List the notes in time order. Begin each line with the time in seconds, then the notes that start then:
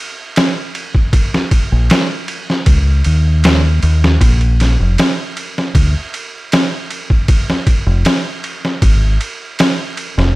0.36 snare, ride
0.75 ride
0.95 kick
1.13 kick, ride
1.34 snare
1.51 kick, ride
1.72 A#1
1.90 snare, ride
2.28 ride
2.50 snare
2.66 C#2, kick, ride
3.04 D#2, ride
3.44 snare, ride
3.83 D#2, ride
4.04 snare
4.21 A#1, kick, ride
4.41 ride
4.60 snare, ride
4.80 F1
4.98 snare, ride
5.37 ride
5.58 snare
5.75 D2, kick, ride
6.14 ride
6.52 snare, ride
6.90 ride
7.10 kick
7.28 kick, ride
7.50 snare
7.67 kick, ride
7.87 F1
8.05 snare, ride
8.44 ride
8.65 snare
8.82 G#1, kick, ride
9.21 ride
9.59 snare, ride
9.97 ride
10.18 F1, snare